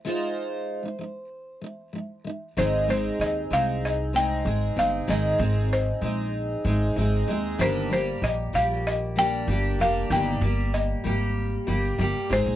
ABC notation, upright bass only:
X:1
M:4/4
L:1/16
Q:1/4=96
K:Eb
V:1 name="Upright bass" clef=bass
z16 | A,,,4 E,,2 C,,6 A,,,2 G,,,2 | A,,,2 A,,,4 B,,,4 A,,,2 A,,,2 E,,2 | G,,,4 B,,,2 B,,,6 G,,,2 F,,,2 |
G,,,2 G,,,4 A,,,4 G,,,2 G,,, z A,,, B,,, |]